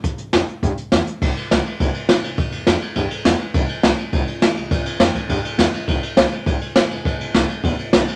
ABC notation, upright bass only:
X:1
M:4/4
L:1/8
Q:1/4=205
K:C
V:1 name="Upright bass" clef=bass
C,, E,, F,, z G,, z E,, z | C,, z C,, z C,, z E,, C,, | C,, E,, F,, z G,, z E,, z | C,, z C,, z C,, z E,, C,, |
C,, E,, F,, z G,, z E,, z | C,, z C,, z C,, z E,, F,,, | G,,, B,,, C,, z D,, z B,,, z |]